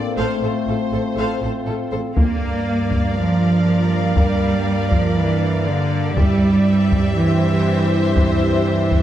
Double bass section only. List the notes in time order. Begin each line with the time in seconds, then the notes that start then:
0.18 A1
0.43 A1
0.67 A1
0.92 A1
1.18 A1
1.43 A1
1.67 A1
1.92 A1
2.17 G2
6.17 G2